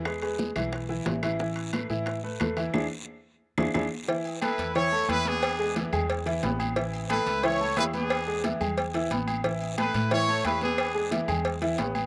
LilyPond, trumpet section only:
\new Staff \with { instrumentName = "Trumpet section" } { \time 4/4 \key a \major \tempo 4 = 179 << { r1 | r1 | r1 | r4 b'4 cis''4 b'8 gis'8~ |
gis'4 r2. | r4 b'4 cis''4 b'8 gis'8~ | gis'4 r2. | r4 b'4 cis''4 b'8 gis'8~ |
gis'4 r2. | } \\ { r1 | r1 | r1 | r4 e'4 e'4. <b d'>8~ |
<b d'>4. r2 r8 | r4 e'4 e'4. <b d'>8~ | <b d'>4. r2 r8 | r4 e'4 e'4. <b d'>8~ |
<b d'>4. r2 r8 | } >> }